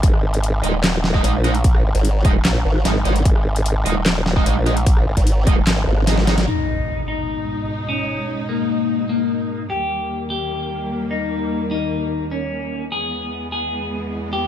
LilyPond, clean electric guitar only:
\new Staff \with { instrumentName = "Clean electric guitar" } { \time 4/4 \key gis \minor \tempo 4 = 149 r1 | r1 | r1 | r1 |
dis'4. dis'2 cis'8~ | cis'4 ais4. ais4. | g'4. g'2 dis'8~ | dis'4 dis'4. cis'4. |
gis'4. gis'2 g'8 | }